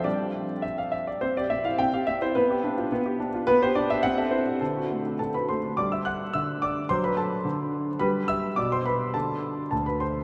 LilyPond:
\new Staff \with { instrumentName = "Grand piano" } { \time 2/4 \key g \mixolydian \tempo 4 = 105 << { d''4 e''16 f''16 e''16 d''16 | c''16 d''16 e''16 f''16 g''16 f''16 e''16 c''16 | b'4. r8 | \key g \major b'16 c''16 d''16 e''16 fis''16 e''16 c''8 |
a'4 <a' a''>16 <b' b''>16 <c'' c'''>8 | <d'' d'''>16 <e'' e'''>16 <fis'' fis'''>8 <e'' e'''>8 <d'' d'''>8 | <c'' c'''>16 <b' b''>16 <a' a''>8 r4 | <b' b''>8 <e'' e'''>8 <d'' d'''>16 <c'' c'''>16 <b' b''>8 |
<a' a''>4 <a' a''>16 <b' b''>16 <c'' c'''>8 | } \\ { <g d' g'>4 r4 | c'16 g'16 c'16 e'16 c'16 g'16 c'16 e'16 | b16 g'16 d'16 f'16 b16 g'16 d'16 f'16 | b16 g'16 d'16 g'16 c'16 a'16 e'16 g'16 |
d16 fis'16 a16 d'16 d16 fis'16 a16 d'16 | g4 d4 | fis4 d4 | g4 b,4 |
d4 d,4 | } >> }